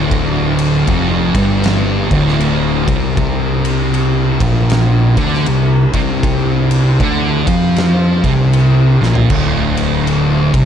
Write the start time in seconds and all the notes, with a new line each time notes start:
Already playing: D1 D2
0.11 kick, ride
0.59 ride
0.87 F1 F2, kick, ride
1.34 G1 G2, kick, ride
1.64 snare, ride
2.11 D1 D2, kick, ride
2.28 snare
2.40 ride
2.88 C2 C3, kick, ride
3.17 C2 C3, kick, ride
3.65 ride
3.94 ride
4.40 A#1 A#2, kick, ride
4.70 snare, ride
5.17 D2 D3, kick, ride
5.34 snare
5.46 C2 C3, ride
5.93 C2 C3, kick, ride
6.23 kick, ride
6.71 ride
7.00 D2 D3, kick, ride
7.47 F2 F3, kick, ride
7.76 snare, ride
8.24 C2 C3, kick, ride
8.53 ride
9.01 A#1 A#2, snare
9.15 floor tom
9.30 D1 D2, kick, crash
9.77 ride
10.07 ride
10.54 C2 C3, kick, ride